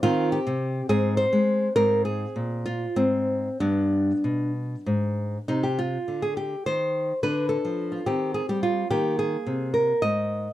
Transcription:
0.03 D#3 C4 F4
0.32 G4
0.47 C3
0.89 G#2 C4 G#4
1.17 C5
1.33 G#3
1.76 G#2 C4 A#4
2.05 G#4
2.36 A#2
2.66 F4
2.96 G#2 C4
3.60 G2 B3 D4
4.24 B2
4.86 G#2
5.48 C3 D#4
5.63 G4
5.79 F4
6.08 D3
6.22 G#4
6.37 G4
6.66 D#3 C5
7.23 D3 D4 B4
7.49 A4
7.65 F3
7.92 F4
8.06 D#3 C4 G4
8.34 G#4
8.49 G3 G4
8.63 F4
8.90 D#3 A#3 G4
9.19 G#4
9.46 C3
9.74 A#4
10.02 G#2 D#5

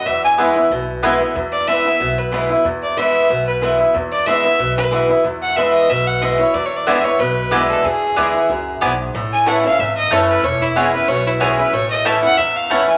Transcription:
0.06 E2 E5
0.24 G#5
0.38 E3 G#3 B3 E4 B4 G#5
0.56 B3 E4
0.70 B1 B2
1.03 E3 G#3 B3 E4 B4 G#5
1.20 B3 E4
1.35 E2
1.52 D5
1.68 E3 G#3 B3 E4 E5
1.85 B3 E4
2.00 B1 B2
2.18 B4
2.32 E3 G#3 B3 E4
2.50 B3 E4
2.65 E2
2.83 D5
2.97 E3 G#3 B3 E4 E5
3.30 B1 B2
3.47 B4
3.62 E3 G#3 B3 E4
3.79 B3 E4
3.94 E2
4.12 D5
4.26 E3 G#3 B3 E4 E5
4.44 B3 E4
4.59 B1 B2
4.77 B4
4.91 E3 G#3 B3 E4
5.09 B3 E4
5.24 E2
5.42 F#5
5.57 E3 G#3 B3 E4 E5
5.74 D#5
5.89 B1 B2 E5
6.07 F#5
6.21 E3 G#3 B3 E4 D#5
6.39 B3 E4 C#5
6.54 E2 D5
6.66 C#5
6.76 D5
6.87 D3 G#3 B3 E4 D5 E5 G#5
7.04 B3 E4 C#5
7.19 B1 B2 B4
7.51 D3 G#3 B3 E4 D5 G#5
7.69 A4
7.84 E2 G#4
8.16 D2 D3 G#3 B3 E4 D5 G#5
8.34 B3 E4
8.49 C#2 F#2
8.81 B1 G#2 B3 E4 D5 G#5
9.14 A1 A2
9.32 G#5
9.46 E3 A3 C#4 E4 C#5 F#5 A5
9.64 C#4 E4 F5
9.79 G#1 E2 E5
9.97 D#5
10.10 F#1 E3 A3 C#4 E4 C#5 A5
10.29 B4
10.43 E1 E2 C#5
10.62 E4
10.76 E3 G#3 B3 C#4 E4 G#4 C#5 G#5
10.93 C#4 E4 B4
11.08 B1 B2 C#5
11.27 E4
11.40 E3 G#3 B3 C#4 E4 G#4 C#5 G#5
11.58 C#4 E4 B4
11.73 A1 A2 C#5
11.91 D#5
12.05 E3 A3 C#4 E4 C#5 E5 A5
12.23 C#4 E4 F#5
12.37 E2 E5
12.56 F5
12.70 E3 A3 C#4 E4 C#5 F#5 A5
12.87 C#4 E4 G#5

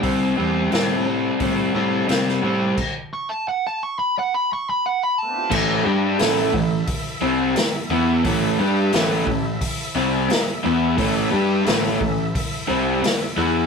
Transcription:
0.02 C2 C3 G3 C4, kick, open hi-hat
0.37 E2 C3 G3 C4
0.71 A2 C3 G3 C4, snare, open hi-hat
1.06 C3 G3 C4
1.40 A2 C3 G3 C4, kick, open hi-hat
1.74 A2 C3 G3 C4
2.07 C3 G3 C4, snare, open hi-hat
2.28 snare
2.42 A2 C3 G3 C4
2.77 kick, crash
3.13 C#6
3.29 A5
3.48 F#5
3.67 A5
3.83 C#6
3.99 B5
4.19 F#5
4.34 B5
4.53 C#6
4.70 B5
4.86 F#5
5.03 B5
5.18 A5
5.22 A3 B3
5.28 C4 D4
5.34 E4 F4
5.38 G4 A4
5.44 B4 C5
5.50 A1 A2 E3 A3 E4 A4 D5 E5, kick, crash
5.84 G2 G3 D4 G4
6.19 A1 A2 E3 A3, snare, open hi-hat
6.53 A1 A2 E3, kick
6.87 kick, open hi-hat
7.21 C2 C3 G3 C4
7.56 muted picked electric bass stroke, muted overdriven electric guitar stroke, snare, open hi-hat
7.90 E2 E3 B3 E4
8.24 A1 A2 E3 A3 E4 A4 E5, kick, open hi-hat
8.59 G2 G3 D4 G4
8.92 A1 A2 E3 A3, snare, open hi-hat
9.26 A1 A2 E3, kick
9.61 kick, open hi-hat
9.95 C2 C3 G3 C4
10.30 muted overdriven electric guitar stroke, muted picked electric bass stroke, snare, open hi-hat
10.63 E2 E3 B3 E4
10.97 A1 A2 E3 A3 E4 A4 E5, kick, open hi-hat
11.31 G2 G3 D4 G4
11.64 A1 A2 E3 A3, snare, open hi-hat
11.99 A1 A2 E3, kick
12.35 kick, open hi-hat
12.68 C2 C3 G3 C4
13.03 muted overdriven electric guitar stroke, muted picked electric bass stroke, snare, open hi-hat
13.37 E2 E3 B3 E4

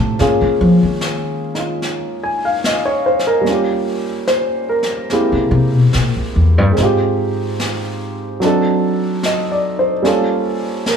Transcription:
Already playing: A3 C4 D#4 F4 G4
0.00 A2
0.19 G#2 G#3 A#3 C#4 F4 G#4, brush sweep, snare
0.41 C#3
0.61 F3
0.83 D#3
1.01 snare
1.55 D#4 F4, snare
1.82 brush sweep, snare
2.23 G#5
2.45 F5
2.64 D#5, snare
2.86 C#5
3.06 C5
3.19 snare
3.27 A#4
3.41 G3 A#3
3.46 C#4 F4, brush sweep, snare
3.52 G4
4.27 C5, snare
4.69 A#4
4.83 snare
5.10 G#3 A#3 C4 E4 G4, brush sweep, snare
5.32 C#3
5.51 C3
5.73 B2
5.93 A#2, snare
6.16 C#2
6.36 E2
6.58 G2
6.72 G#3 C4
6.77 G#2 D#4 F4, brush sweep, snare
6.83 G4
7.60 snare
8.40 F#3 C4 D4 D#4, brush sweep, snare
8.46 A4
9.23 D#5, snare
9.52 D5
9.79 C5
10.02 G3 A#3 C#4 F4, brush sweep, snare
10.07 A4
10.86 A#4, snare

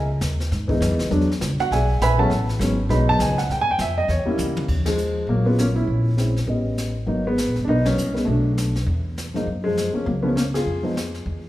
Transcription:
Already playing: C#2
0.21 D#2, snare, hi-hat pedal
0.40 snare
0.51 G#2, brush sweep, snare
0.68 E3 G#3 B3 D#4, kick
0.81 F#2, snare, hi-hat pedal
0.90 E2
0.99 C#2, snare
1.10 E2 F#3 G#3 B3 D4, brush sweep, snare
1.21 snare
1.31 snare
1.41 C#2, snare, hi-hat pedal
1.59 F#4 F#5, muted upright bass stroke, snare
1.71 B1 G#4 D5 E5 G#5, brush sweep, snare
2.00 A#1 B4 E5 G#5 B5, snare, hi-hat pedal
2.18 F#3 G#3 B3 C#4 A4 E5 F#5 A5
2.30 A1, brush sweep, snare
2.49 snare
2.59 G#1 F#3 G#3 B3 C#4, snare, hi-hat pedal
2.89 B1 F#3 G#3 B3 D#4 B5, brush sweep, snare
3.09 A5
3.19 C#2 G#5, snare, hi-hat pedal
3.38 F#5, snare
3.49 D#2 G5, brush sweep, snare
3.61 G#5
3.71 G5
3.79 F2 E5, snare, hi-hat pedal
3.98 D#5
4.08 E2 C#5, brush sweep, snare
4.25 G3 A#3 C#4 E4, muted upright bass stroke
4.38 C#2, hi-hat pedal, high tom
4.57 high tom
4.68 D#2, brush sweep, kick, crash
4.86 F3 G#3, snare, ride
4.98 hi-hat pedal
5.27 A#1 F#3 A#3, brush sweep
5.46 F#3 G#3 A#3 B3 C#4 F4
5.58 A#3 C#4, snare, hi-hat pedal
5.76 C#4 E4
5.87 A#1, brush sweep
6.17 G#3 C4 C#4 E4, snare, hi-hat pedal
6.36 snare
6.47 A1 G3 B3 C#4 D#5, brush sweep
6.78 snare, hi-hat pedal
7.06 G#1 F#3 A#3 B3 D#4, brush sweep
7.27 G#3 B3
7.38 snare, hi-hat pedal
7.47 A#1
7.56 G1, snare
7.64 B1 D4, brush sweep
7.69 B3 D#4
7.85 F#3 A#3 B3 C#4, snare, ride
7.97 C2, hi-hat pedal
8.14 G#3 B3, snare
8.25 B1 F#3 A3 C#4, brush sweep
8.29 D4
8.57 snare, hi-hat pedal
8.76 snare
8.86 E2, brush sweep
9.18 snare, hi-hat pedal
9.34 F3 G#3 A#3 D#4, snare
9.46 F#2, brush sweep
9.64 F3 G#3
9.77 snare, hi-hat pedal
9.93 F3 G#3 A#3 C#4, muted upright bass stroke
10.06 C#2 F#3 A#3, brush sweep
10.23 F3 G#3 A#3 B3 C#4
10.36 A#3 C#4, snare, hi-hat pedal
10.54 F4 G#4, snare, ride
10.66 F2, brush sweep
10.83 F3 G#3 B3 D#4
10.97 snare, hi-hat pedal
11.14 snare
11.26 E2, brush sweep

